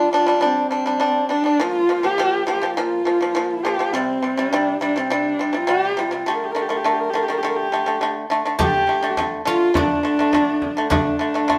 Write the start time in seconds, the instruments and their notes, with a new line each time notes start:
Already playing: horsehead fiddle F4
0.13 pipa G3 D4, horsehead fiddle F4
0.26 pipa G3 D4
0.41 pipa G3 D4
0.45 horsehead fiddle C4
0.71 pipa G3 D4
0.86 pipa G3 D4
1.00 pipa G3 D4
1.29 pipa G3 D4, horsehead fiddle D4
1.44 pipa G3 D4
1.60 pipa A#2 F3, horsehead fiddle F4
1.89 pipa A#2 F3
2.03 pipa A#2 F3, horsehead fiddle G4
2.18 pipa A#2 F3
2.47 pipa A#2 F3, horsehead fiddle G4
2.61 pipa A#2 F3
2.77 pipa A#2 F3, horsehead fiddle F4
3.05 pipa A#2 F3
3.21 pipa A#2 F3
3.35 pipa A#2 F3
3.63 pipa A#2 F3, horsehead fiddle G4
3.79 pipa A#2 F3
3.93 pipa C3 G3, horsehead fiddle C4
4.22 pipa C3 G3
4.37 pipa C3 G3, horsehead fiddle D4
4.53 pipa C3 G3
4.81 pipa C3 G3, horsehead fiddle D4
4.96 pipa C3 G3, horsehead fiddle C4
5.10 pipa C3 G3, horsehead fiddle D4
5.39 pipa C3 G3
5.53 pipa C3 G3, horsehead fiddle F4
5.67 pipa C3 G3, horsehead fiddle G4
5.97 pipa C3 G3, horsehead fiddle F4
6.11 pipa C3 G3
6.26 pipa D3 A3, horsehead fiddle G4
6.35 horsehead fiddle A#4
6.45 horsehead fiddle G4
6.52 pipa D3, horsehead fiddle A#4
6.56 pipa A3
6.62 horsehead fiddle G4
6.69 pipa D3 A3, horsehead fiddle A#4
6.76 horsehead fiddle G4
6.84 pipa D3 A3, horsehead fiddle A#4
6.93 horsehead fiddle G4
7.00 horsehead fiddle A#4
7.10 pipa D3, horsehead fiddle G4
7.15 pipa A3, horsehead fiddle A#4
7.23 horsehead fiddle G4
7.28 pipa D3 A3, horsehead fiddle A#4
7.38 horsehead fiddle G4
7.43 pipa D3 A3
7.48 horsehead fiddle A#4
7.56 horsehead fiddle G4
7.72 pipa D3 A3
7.86 pipa D3 A3
8.01 pipa D3 A3
8.30 pipa D3 A3
8.45 pipa D3 A3
8.59 pipa D3 A3, guzheng G4, horsehead fiddle G4, frame drum
8.75 frame drum
8.87 pipa D3 A3
9.03 pipa D3 A3
9.17 pipa D3 A3, frame drum
9.45 pipa D3 A3, guzheng F4
9.50 horsehead fiddle F4
9.74 pipa D3 A3, guzheng D4, frame drum
9.78 horsehead fiddle D4
10.03 pipa D3 A3
10.19 pipa D3 A3, frame drum
10.33 pipa D3 A3, frame drum
10.62 frame drum
10.77 pipa D3 A3
10.90 pipa D3 A3, guzheng D4, frame drum
10.94 horsehead fiddle D4
11.06 frame drum
11.19 pipa D3 A3
11.34 pipa D3 A3
11.48 pipa D3 A3, frame drum